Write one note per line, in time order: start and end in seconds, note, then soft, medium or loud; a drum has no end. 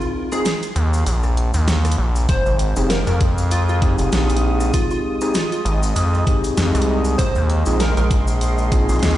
0.00 0.28 C4 medium
0.00 0.28 D#4 medium
0.00 0.28 F4 medium
0.00 0.28 G#4 loud
0.00 cabasa soft
0.32 0.45 C4 medium
0.32 0.45 D#4 medium
0.32 0.45 F4 medium
0.32 0.40 G#4 medium
0.32 0.45 G#4 loud
0.32 cross-stick soft
0.32 cabasa medium
0.45 0.56 G#4 medium
0.45 snare loud
0.45 closed hi-hat medium
0.45 cabasa medium
0.63 closed hi-hat soft
0.63 cabasa soft
0.76 1.04 D#2 loud
0.76 closed hi-hat medium
0.93 cabasa medium
1.06 1.52 A#1 medium
1.06 closed hi-hat medium
1.06 cabasa medium
1.23 cross-stick soft
1.23 cabasa soft
1.37 closed hi-hat medium
1.54 1.96 D#2 medium
1.54 closed hi-hat soft
1.54 cabasa medium
1.68 snare loud
1.68 closed hi-hat medium
1.68 cabasa medium
1.85 cross-stick medium
1.85 closed hi-hat medium
1.85 cabasa soft
1.92 closed hi-hat medium
1.98 2.27 A#1 loud
2.16 cabasa medium
2.28 2.43 F1 loud
2.28 9.18 G#3 medium
2.28 2.53 C5 medium
2.28 4.71 F5 medium
2.28 7.15 D#6 loud
2.28 kick loud
2.28 closed hi-hat medium
2.28 cabasa medium
2.46 2.74 G#1 loud
2.46 cabasa soft
2.59 closed hi-hat medium
2.76 3.05 F1 loud
2.76 2.90 C4 medium
2.76 2.90 D#4 medium
2.76 2.90 G4 medium
2.76 2.90 G#4 loud
2.76 cabasa medium
2.90 3.01 A#4 medium
2.90 snare loud
2.90 closed hi-hat medium
2.90 cabasa medium
3.07 3.96 F2 loud
3.07 3.16 A#4 medium
3.07 closed hi-hat soft
3.07 cabasa soft
3.21 kick loud
3.21 closed hi-hat medium
3.38 cabasa medium
3.51 3.63 F4 medium
3.51 closed hi-hat medium
3.51 cabasa medium
3.69 3.77 F4 medium
3.69 cabasa soft
3.82 5.18 C4 medium
3.82 5.18 D#4 medium
3.82 5.18 G4 medium
3.82 5.18 G#4 medium
3.82 kick loud
3.82 closed hi-hat medium
3.98 4.10 F1 loud
3.98 closed hi-hat soft
3.98 cabasa medium
4.12 4.72 A#1 medium
4.12 snare loud
4.12 closed hi-hat medium
4.12 cabasa medium
4.29 closed hi-hat medium
4.29 cabasa soft
4.37 closed hi-hat medium
4.60 cross-stick soft
4.60 cabasa medium
4.73 4.85 F4 medium
4.73 9.18 D#5 medium
4.73 kick loud
4.73 closed hi-hat medium
4.73 cabasa medium
4.91 5.00 F4 medium
4.91 cabasa soft
5.21 5.35 C4 medium
5.21 5.35 D#4 medium
5.21 5.35 G4 medium
5.21 5.35 G#4 medium
5.21 cross-stick soft
5.21 cabasa loud
5.34 5.46 F4 medium
5.34 snare loud
5.34 closed hi-hat medium
5.34 cabasa medium
5.52 5.61 F4 medium
5.52 closed hi-hat soft
5.52 cabasa soft
5.65 5.94 G#1 loud
5.65 closed hi-hat medium
5.83 cabasa medium
5.96 6.25 F2 medium
5.96 closed hi-hat medium
5.96 cabasa medium
6.13 cross-stick soft
6.13 cabasa soft
6.27 7.17 C4 medium
6.27 7.17 D#4 medium
6.27 7.17 G4 medium
6.27 7.17 G#4 medium
6.27 kick loud
6.27 closed hi-hat medium
6.44 closed hi-hat soft
6.44 cabasa medium
6.57 6.72 F2 medium
6.57 snare loud
6.57 closed hi-hat medium
6.57 cabasa medium
6.75 7.17 C2 loud
6.75 cross-stick medium
6.75 closed hi-hat medium
6.75 cabasa soft
6.82 closed hi-hat medium
7.05 cabasa medium
7.18 7.33 A#1 loud
7.18 7.43 C5 loud
7.18 9.18 C6 medium
7.18 kick loud
7.18 closed hi-hat medium
7.18 cabasa medium
7.35 7.64 D#2 loud
7.35 cabasa soft
7.50 closed hi-hat medium
7.66 7.95 A#1 medium
7.66 7.80 C4 medium
7.66 7.80 D#4 medium
7.66 7.80 F4 medium
7.66 7.80 G#4 medium
7.66 cabasa medium
7.80 7.91 A#4 medium
7.80 snare loud
7.80 closed hi-hat medium
7.80 cabasa medium
7.97 8.86 A#1 loud
7.97 8.06 A#4 medium
7.97 closed hi-hat soft
7.97 cabasa soft
8.11 kick loud
8.11 closed hi-hat medium
8.27 cabasa medium
8.41 closed hi-hat medium
8.41 cabasa medium
8.58 cabasa soft
8.72 9.18 C4 medium
8.72 9.18 D#4 medium
8.72 9.18 F4 medium
8.72 9.18 G#4 loud
8.72 kick loud
8.72 closed hi-hat medium
8.89 9.00 A#1 medium
8.89 closed hi-hat soft
8.89 cabasa medium
8.93 closed hi-hat soft
8.96 closed hi-hat soft
8.99 snare loud
8.99 closed hi-hat soft
8.99 cabasa medium
9.03 9.18 D#2 loud
9.03 closed hi-hat medium
9.11 closed hi-hat soft